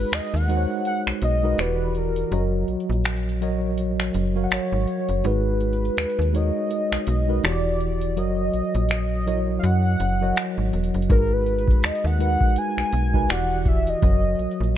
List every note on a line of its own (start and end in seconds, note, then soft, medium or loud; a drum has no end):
0.00 0.37 G#3 medium
0.00 0.37 D#4 medium
0.00 0.37 F#4 medium
0.00 0.37 G#4 medium
0.00 0.15 B4 medium
0.00 0.38 B4 medium
0.00 closed hi-hat soft
0.12 0.21 D#2 soft
0.12 0.36 D#5 loud
0.12 finger snap loud
0.12 closed hi-hat soft
0.24 closed hi-hat soft
0.34 0.66 D#2 medium
0.34 0.86 F#5 loud
0.34 closed hi-hat medium
0.49 1.29 G#3 medium
0.49 1.29 D#4 medium
0.49 1.30 F#4 medium
0.49 1.30 A#4 medium
0.49 0.57 C5 medium
0.49 closed hi-hat medium
0.57 1.33 C#5 medium
0.85 1.01 F#5 loud
0.85 closed hi-hat medium
1.07 1.13 B1 soft
1.07 finger snap medium
1.22 1.55 B1 medium
1.22 1.62 D#5 medium
1.22 closed hi-hat medium
1.43 1.58 G#3 medium
1.43 1.59 D#4 medium
1.43 1.58 F#4 medium
1.43 1.59 A#4 medium
1.43 1.59 B4 medium
1.58 2.24 E1 medium
1.58 2.24 E3 medium
1.58 2.24 E4 medium
1.58 2.24 F#4 medium
1.58 2.24 G4 medium
1.58 1.99 B4 medium
1.58 2.25 D5 medium
1.58 finger snap loud
1.58 closed hi-hat medium
1.95 2.69 A#4 medium
1.95 closed hi-hat soft
2.16 closed hi-hat medium
2.31 2.65 F#1 loud
2.31 3.29 F#3 medium
2.31 3.29 F#4 medium
2.31 3.30 A#4 medium
2.31 3.30 C#5 medium
2.31 3.30 D#5 medium
2.31 closed hi-hat medium
2.68 2.77 A#1 soft
2.68 closed hi-hat soft
2.80 closed hi-hat soft
2.90 4.11 A#1 medium
2.90 closed hi-hat soft
3.04 finger snap loud
3.04 closed hi-hat soft
3.17 closed hi-hat soft
3.29 closed hi-hat medium
3.41 4.22 F#3 medium
3.41 4.22 F#4 medium
3.41 4.22 A#4 medium
3.41 4.23 C#5 medium
3.41 4.23 D#5 medium
3.41 closed hi-hat medium
3.78 closed hi-hat medium
4.00 finger snap medium
4.14 4.48 F#1 medium
4.14 closed hi-hat medium
4.35 5.14 F#3 medium
4.35 5.14 F#4 medium
4.35 5.15 A#4 medium
4.35 5.15 C#5 medium
4.35 4.42 F5 medium
4.44 5.18 F#5 medium
4.51 4.60 G#1 soft
4.51 5.27 C#5 medium
4.51 finger snap loud
4.51 closed hi-hat medium
4.72 4.86 G#1 medium
4.87 closed hi-hat soft
5.09 5.23 F#1 medium
5.09 closed hi-hat medium
5.24 5.90 G#1 loud
5.24 6.22 G#3 medium
5.24 6.22 D#4 medium
5.24 6.22 F#4 medium
5.24 6.23 G#4 medium
5.24 6.23 B4 medium
5.24 6.37 B4 loud
5.24 closed hi-hat medium
5.61 closed hi-hat soft
5.73 closed hi-hat soft
5.85 closed hi-hat soft
5.97 6.06 D#2 soft
5.97 finger snap loud
5.97 closed hi-hat soft
6.09 closed hi-hat soft
6.19 6.52 D#2 medium
6.19 closed hi-hat medium
6.34 7.14 G#3 medium
6.34 7.15 D#4 medium
6.34 7.15 F#4 medium
6.34 7.15 A#4 medium
6.34 7.15 C#5 medium
6.34 7.47 D#5 loud
6.34 closed hi-hat medium
6.70 closed hi-hat medium
6.92 6.98 B1 soft
6.92 finger snap medium
7.07 7.40 B1 medium
7.07 closed hi-hat medium
7.28 7.43 G#3 medium
7.28 7.44 D#4 medium
7.28 7.43 F#4 medium
7.28 7.44 A#4 medium
7.28 7.45 B4 medium
7.43 8.19 E1 medium
7.43 8.09 E3 medium
7.43 8.09 E4 medium
7.43 8.09 F#4 medium
7.43 8.09 G4 medium
7.43 7.52 C#5 medium
7.43 8.20 D5 loud
7.43 finger snap loud
7.43 closed hi-hat medium
7.52 8.13 D5 medium
7.80 closed hi-hat soft
8.01 closed hi-hat medium
8.16 8.50 F#1 loud
8.16 9.15 F#3 medium
8.16 9.15 F#4 medium
8.16 9.15 A#4 medium
8.16 9.15 C#5 medium
8.16 8.91 D#5 loud
8.16 9.16 D#5 medium
8.16 closed hi-hat medium
8.54 8.62 A#1 soft
8.54 closed hi-hat soft
8.75 9.59 A#1 medium
8.75 closed hi-hat medium
8.89 9.54 D#5 loud
8.89 finger snap loud
8.89 closed hi-hat medium
9.26 10.07 F#3 medium
9.26 9.34 E4 soft
9.26 10.08 A#4 medium
9.26 10.08 C#5 medium
9.26 10.08 D#5 medium
9.26 closed hi-hat medium
9.33 10.11 F#4 medium
9.59 9.66 F5 medium
9.63 9.96 F#2 loud
9.63 10.74 F#5 loud
9.63 closed hi-hat medium
10.00 10.33 F#1 medium
10.00 closed hi-hat medium
10.21 11.00 F#3 medium
10.21 11.00 F#4 medium
10.21 11.00 A#4 medium
10.21 11.00 C#5 medium
10.21 11.01 D#5 medium
10.36 finger snap loud
10.36 closed hi-hat medium
10.58 10.72 G#1 medium
10.73 10.92 E1 medium
10.73 closed hi-hat soft
10.84 closed hi-hat soft
10.94 11.08 F#1 medium
10.94 closed hi-hat soft
11.02 closed hi-hat soft
11.09 11.76 G#1 loud
11.09 12.07 G#3 medium
11.09 12.08 D#4 medium
11.09 12.08 F#4 medium
11.09 12.08 G#4 medium
11.09 11.34 A#4 medium
11.09 12.08 B4 medium
11.09 kick loud
11.09 closed hi-hat medium
11.33 11.86 B4 medium
11.46 closed hi-hat soft
11.58 closed hi-hat soft
11.68 kick medium
11.68 closed hi-hat soft
11.83 11.92 D#2 soft
11.83 12.07 D#5 medium
11.83 finger snap loud
11.83 closed hi-hat soft
11.95 closed hi-hat medium
12.04 12.37 D#2 medium
12.04 12.20 F#5 loud
12.04 closed hi-hat medium
12.19 13.00 G#3 medium
12.19 13.00 D#4 medium
12.19 13.00 F#4 medium
12.19 13.01 A#4 medium
12.19 13.01 B4 medium
12.19 12.59 F#5 loud
12.19 closed hi-hat medium
12.41 kick medium
12.56 13.33 G#5 loud
12.56 closed hi-hat medium
12.78 12.84 B1 soft
12.78 finger snap medium
12.93 13.26 B1 medium
12.93 closed hi-hat medium
13.13 13.29 G#3 medium
13.13 13.29 D#4 medium
13.13 13.28 F#4 medium
13.13 13.30 A#4 medium
13.13 13.30 B4 medium
13.13 kick medium
13.29 13.95 E1 medium
13.29 13.94 E3 medium
13.29 13.94 E4 medium
13.29 13.95 F#4 medium
13.29 13.95 G4 medium
13.29 13.95 D5 medium
13.29 13.69 F#5 loud
13.29 finger snap loud
13.29 closed hi-hat medium
13.65 13.90 E5 loud
13.65 kick medium
13.65 closed hi-hat soft
13.87 14.77 D#5 medium
13.87 closed hi-hat medium
14.02 14.35 F#1 loud
14.02 14.77 F#3 medium
14.02 14.77 F#4 medium
14.02 14.77 A#4 medium
14.02 14.77 C#5 medium
14.02 14.77 D#5 medium
14.02 kick loud
14.02 closed hi-hat medium
14.39 14.48 A#1 soft
14.39 closed hi-hat soft
14.51 closed hi-hat soft
14.61 14.77 A#1 medium
14.61 closed hi-hat soft